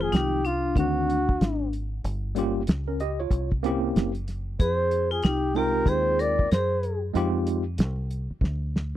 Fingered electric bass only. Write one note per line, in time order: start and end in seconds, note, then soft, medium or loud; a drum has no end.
0.13 0.74 C2 medium
0.76 1.37 D2 medium
1.41 2.01 G#1 medium
2.04 2.65 G1 loud
2.68 3.29 C#2 loud
3.31 3.92 C2 medium
3.96 4.56 F#1 medium
4.60 5.20 F2 loud
5.24 5.84 C2 medium
5.86 6.47 D#2 medium
6.52 7.12 F#2 medium
7.15 7.80 F2 loud
7.79 8.28 C2 medium
8.31 muted fingered electric bass stroke soft
8.41 8.97 D2 medium